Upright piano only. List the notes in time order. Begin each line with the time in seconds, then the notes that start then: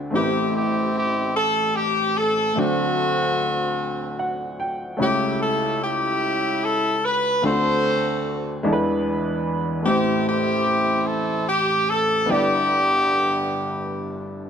Already playing: D2 D3 C4 E4 F#4 D5
0.11 A1 A2 A3 C4 E4
0.15 G4 B4
0.23 C5
2.54 D2 D3 A3 C4 D4
2.58 F#3 C5
4.19 F#5
4.60 G5
4.97 C#2 C#3 A3 C#4 E4
5.02 G4 C#5
7.42 D2 D3 A3 C4 D4 F4 C5
7.50 F#4
8.63 E2 E3 G#3 B3 D4 E4 A4
8.73 B4
9.83 A1 A2 A3 C4 E4
9.87 G4 C5
12.26 G1 G2 B3 D4 E4
12.30 G4 D5